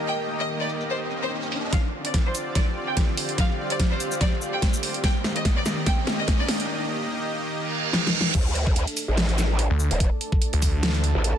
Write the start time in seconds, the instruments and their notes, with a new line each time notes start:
Already playing: supersaw synth D#3 A#3 G4 D#5, analog synth pad A#4 D#5 G5, riser
0.07 violin section G5
0.39 violin section D#5
0.60 violin section D5
0.69 shaker
0.81 shaker
0.90 violin section C5
1.11 shaker
1.22 violin section C5
1.43 shaker
1.52 open hi-hat
1.73 supersaw synth D3 C4 F4 D5, violin section F5, kick, snare, closed hi-hat, riser
2.05 violin section D5, closed hi-hat
2.14 kick, snare, closed hi-hat
2.26 analog synth pad G4, violin section C5
2.35 closed hi-hat, shaker
2.55 violin section D5, kick, snare, closed hi-hat
2.74 analog synth pad F5
2.80 analog synth pad C5
2.88 violin section G5
2.97 kick, snare, closed hi-hat
3.17 open hi-hat
3.29 closed hi-hat
3.38 violin section F5, kick, snare, closed hi-hat
3.70 violin section D5, closed hi-hat
3.80 kick, snare, closed hi-hat
3.91 violin section C5
4.00 closed hi-hat, shaker
4.12 shaker
4.21 violin section D5, kick, snare, closed hi-hat
4.42 shaker
4.53 violin section G5
4.62 kick, snare, closed hi-hat
4.74 shaker
4.83 open hi-hat
4.94 closed hi-hat
5.04 analog synth pad D#3, supersaw synth D#3 A#3 G4 D#5, violin section G5, kick, snare, closed hi-hat
5.24 snare
5.36 violin section D#5, closed hi-hat
5.45 kick, snare, closed hi-hat
5.56 violin section D5
5.66 snare, closed hi-hat, shaker
5.86 violin section G5, kick, snare, closed hi-hat
6.07 snare
6.19 violin section D#5
6.28 kick, snare, closed hi-hat
6.39 violin section D5
6.49 snare, open hi-hat
6.60 closed hi-hat
7.52 reverse cymbal
7.93 snare
8.07 snare
8.21 snare
8.35 wobble bass D2, supersaw synth A3 D4 A4, analog synth pad A4, kick, closed hi-hat, crash
8.55 closed hi-hat
8.67 kick
8.76 wobble bass D2, closed hi-hat
8.87 closed hi-hat
8.97 analog synth pad D5, open hi-hat, shaker
9.08 wobble bass A1
9.17 snare, closed hi-hat
9.29 closed hi-hat
9.38 snare, closed hi-hat, shaker
9.59 closed hi-hat
9.70 detuned saw bass D2, analog synth pad A5
9.80 shaker
9.91 wobble bass D#1, closed hi-hat
10.00 kick, closed hi-hat
10.21 closed hi-hat
10.32 kick
10.42 closed hi-hat
10.53 detuned saw bass D2, closed hi-hat
10.62 kick, open hi-hat, shaker
10.83 snare, closed hi-hat
10.94 closed hi-hat
11.04 closed hi-hat
11.15 wobble bass A1
11.24 closed hi-hat